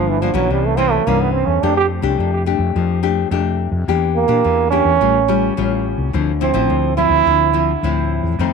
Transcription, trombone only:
0.00 0.11 F3 medium
0.09 0.22 E3 medium
0.21 0.35 F3 medium
0.34 0.53 F#3 medium
0.52 0.68 G3 medium
0.66 0.78 A3 medium
0.77 0.92 C4 loud
0.91 1.08 A3 medium
1.06 1.22 A#3 medium
1.21 1.34 B3 medium
1.33 1.48 C4 medium
1.46 1.64 C#4 medium
1.63 1.76 D4 medium
1.77 1.85 G4 loud
4.15 4.68 A#3 medium
4.70 5.52 C#4 loud
6.42 6.94 C4 medium
6.97 7.78 E4 loud

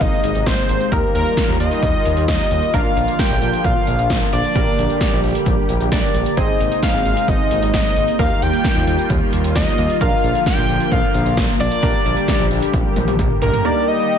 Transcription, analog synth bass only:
0.01 0.10 G#1 loud
0.24 0.33 G#1 loud
0.35 0.44 G#1 loud
0.46 0.55 G#1 loud
0.69 0.78 G#1 loud
0.92 1.01 D#2 loud
1.15 1.24 D#2 loud
1.49 1.58 D#2 loud
1.60 1.69 D#2 loud
1.83 1.92 D#2 loud
2.06 2.15 D#2 loud
2.17 2.26 D#2 loud
2.28 2.37 D#2 loud
2.51 2.60 D#2 medium
2.74 2.83 A#1 loud
2.96 3.06 A#1 medium
3.31 3.40 A#1 loud
3.42 3.51 A#1 loud
3.65 3.74 A#1 loud
3.87 3.96 A#1 loud
3.99 4.08 A#1 loud
4.10 4.19 A#1 loud
4.33 4.42 A#1 loud
4.56 4.65 A#1 loud
4.78 4.87 A#1 loud
5.12 5.21 A#1 medium
5.24 5.33 A#1 loud
5.46 5.55 A#1 loud
5.69 5.78 A#1 medium
5.81 5.90 A#1 loud
5.92 6.01 A#1 loud
6.15 6.24 A#1 loud
6.37 6.46 G#1 loud
6.60 6.69 G#1 loud
6.94 7.03 G#1 loud
7.06 7.15 G#1 loud
7.28 7.37 G#1 loud
7.51 7.60 G#1 loud
7.62 7.71 G#1 loud
7.74 7.83 G#1 loud
7.97 8.06 G#1 loud
8.19 8.28 D#2 loud
8.42 8.51 D#2 loud
8.76 8.85 D#2 loud
8.87 8.96 D#2 loud
9.10 9.19 D#2 loud
9.33 9.42 D#2 loud
9.44 9.53 D#2 loud
9.56 9.65 D#2 loud
9.78 9.87 D#2 loud
10.01 10.10 A#1 loud
10.24 10.33 A#1 loud
10.58 10.67 A#1 loud
10.69 10.78 A#1 loud
10.92 11.01 A#1 loud
11.15 11.24 A#1 loud
11.26 11.35 A#1 loud
11.37 11.46 A#1 loud
11.60 11.69 A#1 loud
11.83 11.92 A#1 loud
12.06 12.15 A#1 loud
12.40 12.49 A#1 loud
12.51 12.60 A#1 loud
12.74 12.83 A#1 loud
12.96 13.06 A#1 loud
13.08 13.17 A#1 loud
13.19 13.28 A#1 loud
13.42 13.51 A#1 loud

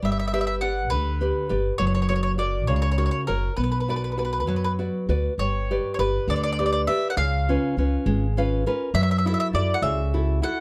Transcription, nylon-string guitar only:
0.02 0.61 G3 medium
0.33 0.61 G4 soft
0.33 0.61 B4 soft
0.33 0.61 D5 soft
0.62 1.10 G4 soft
0.62 1.10 B4 soft
0.62 1.10 D5 soft
0.92 1.49 D3 medium
1.21 1.48 G4 soft
1.21 1.49 B4 soft
1.21 1.49 D5 soft
1.49 1.73 G4 medium
1.49 1.73 B4 soft
1.49 1.74 D5 medium
1.79 2.38 F#3 medium
2.09 2.37 F#4 soft
2.09 2.37 A#4 soft
2.09 2.38 C#5 soft
2.38 2.87 F#4 soft
2.38 2.87 A#4 soft
2.38 2.87 C#5 soft
2.68 3.27 C#3 medium
2.98 3.27 F#4 soft
2.98 3.27 A#4 soft
2.98 3.27 C#5 soft
3.28 3.51 F#4 soft
3.28 3.51 A#4 soft
3.28 3.52 C#5 soft
3.57 4.16 B3 soft
3.88 4.16 F#4 soft
3.88 4.17 B4 soft
3.88 4.17 D5 soft
4.17 4.66 F#4 soft
4.17 4.67 B4 soft
4.17 4.67 D5 soft
4.47 5.06 F#3 medium
4.79 5.08 F#4 soft
4.79 5.08 B4 soft
4.79 5.08 D5 soft
5.09 5.32 F#4 soft
5.09 5.33 B4 soft
5.09 5.33 D5 medium
5.39 5.97 G3 soft
5.71 5.98 G4 soft
5.71 5.98 B4 soft
5.71 5.98 D5 soft
5.99 6.47 G4 soft
5.99 6.47 B4 soft
5.99 6.47 D5 soft
6.28 6.86 D3 medium
6.59 6.86 G4 soft
6.59 6.87 B4 soft
6.59 6.87 D5 soft
6.87 7.11 G4 soft
6.87 7.11 B4 soft
6.87 7.11 D5 medium
7.17 7.75 C#3 soft
7.49 7.77 C#4 soft
7.49 7.77 F4 soft
7.49 7.77 B4 soft
7.78 8.25 C#4 soft
7.78 8.25 F4 soft
7.78 8.25 B4 soft
8.06 8.63 G#3 medium
8.37 8.65 C#4 soft
8.37 8.65 F4 soft
8.37 8.66 B4 soft
8.37 8.64 F5 medium
8.66 8.89 C#4 soft
8.66 8.89 F4 soft
8.66 8.93 A#4 medium
8.66 8.89 B4 medium
8.94 9.52 F#3 soft
9.26 9.52 E4 soft
9.26 9.53 F#4 soft
9.26 9.53 A4 soft
9.53 10.01 E4 soft
9.53 10.01 F#4 soft
9.53 10.02 A4 soft
9.82 10.40 C#3 medium
10.14 10.41 E4 soft
10.14 10.42 F#4 soft
10.14 10.42 A4 medium
10.42 10.60 E4 soft
10.42 10.60 F#4 soft
10.42 10.60 A4 soft

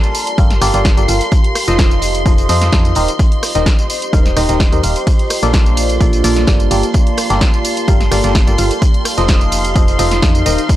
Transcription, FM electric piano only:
0.38 0.52 G3 medium
0.38 0.52 F4 medium
0.38 0.52 G4 medium
0.38 0.52 A4 medium
0.38 0.52 A#4 medium
0.38 0.52 F5 medium
0.62 0.72 G3 loud
0.62 0.72 F4 medium
0.62 0.72 G4 medium
0.62 0.72 A4 medium
0.62 0.72 A#4 medium
0.62 0.72 D5 loud
0.74 0.87 G3 medium
0.74 0.87 F4 medium
0.74 0.87 G4 medium
0.74 0.87 A4 medium
0.74 0.87 A#4 medium
0.74 0.87 D5 loud
0.97 1.07 G3 medium
0.97 1.07 F4 medium
0.97 1.07 G4 medium
0.97 1.07 A4 medium
0.97 1.07 A#4 medium
0.97 1.07 D5 medium
1.08 1.23 F3 medium
1.08 1.23 F4 medium
1.08 1.23 G4 medium
1.08 1.23 A4 medium
1.08 1.23 A#4 medium
1.08 1.23 F5 medium
1.68 2.23 F3 loud
1.68 2.23 D#4 loud
1.68 2.23 F4 medium
1.68 2.23 A4 medium
1.68 2.23 C5 medium
1.68 2.23 D#5 loud
2.26 2.46 F3 medium
2.26 2.46 D#4 medium
2.26 2.46 F4 medium
2.26 2.46 A4 medium
2.26 2.46 C5 medium
2.26 2.46 D#5 loud
2.49 2.70 F3 loud
2.49 2.70 D#4 medium
2.49 2.70 F4 medium
2.49 2.70 A4 medium
2.49 2.70 C5 loud
2.49 2.70 D#5 loud
2.72 2.93 D#3 medium
2.72 2.93 D#4 medium
2.72 2.93 A4 medium
2.96 3.10 D#3 loud
2.96 3.10 D#4 medium
2.96 3.10 G4 medium
2.96 3.10 A#4 medium
2.96 3.10 C5 medium
2.96 3.10 D#5 loud
3.55 3.68 D#3 loud
3.55 3.68 D#4 medium
3.55 3.68 G4 medium
3.55 3.68 A#4 medium
3.55 3.68 C5 medium
3.55 3.68 D#5 loud
4.13 4.27 D#3 medium
4.13 4.27 D#4 medium
4.13 4.27 G4 medium
4.13 4.27 A#4 medium
4.13 4.27 C5 medium
4.13 4.27 F5 medium
4.37 4.47 D#3 medium
4.37 4.47 D#4 medium
4.37 4.47 G4 medium
4.37 4.47 A#4 medium
4.37 4.47 C5 medium
4.37 4.47 D#5 loud
4.49 4.62 D#3 medium
4.49 4.62 D#4 medium
4.49 4.62 G4 medium
4.49 4.62 A#4 medium
4.49 4.62 C5 medium
4.49 4.62 D#5 medium
4.72 4.82 D#3 medium
4.72 4.82 D#4 medium
4.72 4.82 G4 medium
4.72 4.82 A#4 medium
4.72 4.82 C5 medium
4.72 4.82 D#5 medium
4.83 4.98 D#4 medium
4.83 4.98 G4 medium
4.83 4.98 A#4 medium
4.83 4.98 C5 medium
4.83 4.98 F5 medium
5.43 5.98 A#2 loud
5.43 5.98 D4 medium
5.43 5.98 F4 medium
5.43 5.98 A4 medium
5.43 5.98 A#4 medium
5.43 5.98 D5 loud
6.01 6.21 A#2 medium
6.01 6.21 D4 medium
6.01 6.21 F4 medium
6.01 6.21 A4 medium
6.01 6.21 A#4 medium
6.01 6.21 D5 loud
6.24 6.45 A#2 loud
6.24 6.45 D4 medium
6.24 6.45 F4 medium
6.24 6.45 A4 loud
6.24 6.45 A#4 medium
6.24 6.45 D5 loud
6.47 6.68 G3 medium
6.47 6.68 D4 medium
6.47 6.68 F4 medium
6.47 6.68 A4 medium
6.47 6.68 A#4 medium
6.47 6.68 D5 medium
6.71 6.85 G3 loud
6.71 6.85 F4 medium
6.71 6.85 G4 medium
6.71 6.85 A4 medium
6.71 6.85 A#4 medium
6.71 6.85 D5 loud
7.30 7.43 G3 medium
7.30 7.43 F4 medium
7.30 7.43 G4 medium
7.30 7.43 A4 medium
7.30 7.43 A#4 medium
7.30 7.43 D5 loud
7.88 8.02 G3 medium
7.88 8.02 F4 medium
7.88 8.02 G4 medium
7.88 8.02 A4 medium
7.88 8.02 A#4 medium
7.88 8.02 F5 medium
8.12 8.22 G3 medium
8.12 8.22 F4 medium
8.12 8.22 G4 medium
8.12 8.22 A4 medium
8.12 8.22 A#4 medium
8.12 8.22 D5 loud
8.24 8.37 G3 medium
8.24 8.37 F4 medium
8.24 8.37 G4 medium
8.24 8.37 A4 medium
8.24 8.37 A#4 medium
8.24 8.37 D5 loud
8.47 8.57 G3 medium
8.47 8.57 F4 medium
8.47 8.57 G4 medium
8.47 8.57 A4 medium
8.47 8.57 A#4 medium
8.47 8.57 D5 medium
8.58 8.73 F3 medium
8.58 8.73 F4 medium
8.58 8.73 G4 medium
8.58 8.73 A4 medium
8.58 8.73 A#4 medium
8.58 8.73 F5 medium
9.18 9.73 F3 loud
9.18 9.73 D#4 medium
9.18 9.73 F4 medium
9.18 9.73 A4 medium
9.18 9.73 C5 medium
9.18 9.73 D#5 loud
9.76 9.96 F3 medium
9.76 9.96 D#4 medium
9.76 9.96 F4 medium
9.76 9.96 A4 medium
9.76 9.96 C5 medium
9.76 9.96 D#5 medium
9.99 10.20 F3 loud
9.99 10.20 D#4 loud
9.99 10.20 F4 medium
9.99 10.20 A4 loud
9.99 10.20 C5 medium
9.99 10.20 D#5 loud
10.22 10.43 D#3 medium
10.22 10.43 D#4 medium
10.22 10.43 F4 medium
10.22 10.43 A4 medium
10.22 10.43 C5 medium
10.22 10.43 D#5 medium
10.46 10.60 D#3 loud
10.46 10.60 D#4 medium
10.46 10.60 G4 medium
10.46 10.60 A#4 medium
10.46 10.60 C5 loud
10.46 10.60 D#5 loud

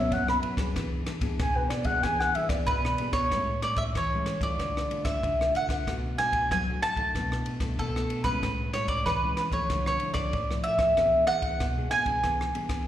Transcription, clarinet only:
0.00 0.14 E5 medium
0.13 0.28 F#5 medium
0.29 0.39 B5 loud
1.42 1.58 G#5 medium
1.56 1.71 B4 medium
1.69 1.87 D5 medium
1.86 2.05 F#5 medium
2.03 2.22 G#5 loud
2.20 2.37 F#5 medium
2.35 2.51 E5 medium
2.50 3.15 D5 medium

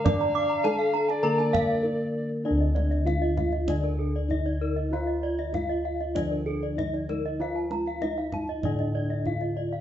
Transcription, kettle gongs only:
0.00 0.60 D3 soft
0.06 1.81 D5 medium
0.64 0.72 D#4 soft
1.23 3.03 D3 soft
1.84 1.92 D#4 soft
2.46 4.27 D4 medium
2.51 6.15 D2 medium
3.07 3.15 D#4 soft
4.31 4.39 D#4 soft
4.93 6.74 F4 medium
5.55 5.63 D#4 soft
6.16 7.98 F3 medium
6.79 6.87 D#4 soft
7.40 9.22 F4 medium
8.03 8.11 D#4 soft
8.65 9.81 A2 medium
9.27 9.35 D#4 soft

